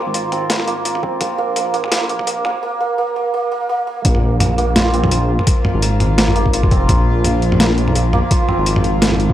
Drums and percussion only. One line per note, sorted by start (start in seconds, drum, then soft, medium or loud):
0.14 closed hi-hat medium
0.32 closed hi-hat soft
0.32 mid tom medium
0.50 snare loud
0.50 closed hi-hat medium
0.60 mid tom medium
0.68 closed hi-hat soft
0.85 closed hi-hat medium
0.95 mid tom medium
1.03 kick loud
1.21 kick loud
1.21 closed hi-hat medium
1.21 mid tom medium
1.56 closed hi-hat medium
1.56 mid tom medium
1.74 closed hi-hat soft
1.84 mid tom medium
1.92 snare loud
1.92 closed hi-hat medium
2.09 closed hi-hat soft
2.19 kick medium
2.19 mid tom medium
2.27 closed hi-hat medium
2.45 mid tom medium
4.05 kick loud
4.05 closed hi-hat medium
4.15 mid tom medium
4.40 closed hi-hat medium
4.40 mid tom medium
4.58 closed hi-hat soft
4.76 snare loud
4.76 closed hi-hat medium
4.76 mid tom medium
4.94 closed hi-hat soft
5.04 mid tom medium
5.11 closed hi-hat medium
5.39 mid tom medium
5.47 kick loud
5.47 closed hi-hat medium
5.65 mid tom medium
5.82 closed hi-hat medium
6.00 closed hi-hat soft
6.00 mid tom medium
6.18 snare loud
6.18 closed hi-hat medium
6.28 mid tom medium
6.36 closed hi-hat soft
6.46 kick medium
6.53 closed hi-hat medium
6.63 kick medium
6.63 mid tom medium
6.71 kick loud
6.71 closed hi-hat soft
6.89 kick loud
6.89 closed hi-hat medium
6.89 mid tom medium
7.24 closed hi-hat medium
7.24 mid tom soft
7.42 closed hi-hat soft
7.52 mid tom medium
7.60 snare loud
7.60 closed hi-hat medium
7.78 closed hi-hat soft
7.88 mid tom medium
7.95 closed hi-hat medium
8.13 mid tom medium
8.31 kick loud
8.31 closed hi-hat medium
8.49 mid tom medium
8.66 closed hi-hat medium
8.76 mid tom medium
8.84 closed hi-hat soft
9.02 snare loud
9.02 closed hi-hat medium
9.12 mid tom soft
9.20 closed hi-hat soft
9.30 kick medium